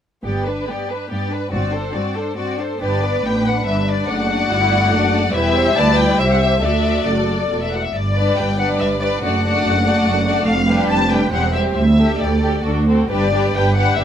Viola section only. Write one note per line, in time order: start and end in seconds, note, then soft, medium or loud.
0.24 0.45 B3 soft
0.47 0.69 D4 soft
0.68 0.90 B3 soft
0.89 1.10 D4 soft
1.10 1.30 B3 soft
1.31 1.52 D4 soft
1.51 1.71 C4 soft
1.73 1.94 D4 soft
1.94 2.15 C4 soft
2.15 2.37 D4 soft
2.37 2.58 C4 soft
2.59 2.79 D4 soft
2.81 3.63 B3 soft
2.81 3.21 D4 soft
3.24 4.48 D4 soft
3.67 4.09 G3 soft
4.08 4.48 A3 soft
4.50 5.32 A3 soft
4.50 4.92 E4 soft
4.91 5.10 D4 soft
5.11 5.19 D4 soft
5.33 6.60 G3 medium
5.33 5.74 E4 medium
5.76 6.18 E4 soft
6.19 6.63 G4 soft
6.63 7.73 A3 soft
6.63 7.73 F#4 soft
8.16 8.57 G3 soft
8.16 8.57 D4 soft
8.58 8.99 G3 soft
8.58 8.99 D4 soft
9.00 9.21 G3 soft
9.00 9.21 D4 soft
9.22 9.41 A3 soft
9.22 9.40 D4 soft
9.42 9.83 A3 soft
9.42 9.83 D4 soft
9.84 10.25 A3 soft
9.84 10.25 D4 soft
10.26 10.46 A3 soft
10.26 10.46 D4 soft
10.68 11.09 G3 soft
10.68 11.09 D4 soft
11.10 11.31 G3 soft
11.10 11.31 D4 soft
11.32 11.52 G3 soft
11.32 11.52 C4 soft
11.53 11.75 G3 soft
11.53 11.75 C4 soft
11.98 12.15 A3 soft
11.98 12.15 D4 soft
12.20 12.62 A3 soft
12.65 12.88 D4 soft
12.87 13.10 C4 soft
13.10 13.31 G3 soft
13.10 13.32 D4 soft
13.33 13.53 G3 soft
13.33 13.53 D4 soft
13.54 13.75 G3 soft
13.54 13.75 D4 soft
13.76 13.96 G3 soft
13.76 13.96 D4 soft
13.97 14.04 G3 soft
13.97 14.04 D4 soft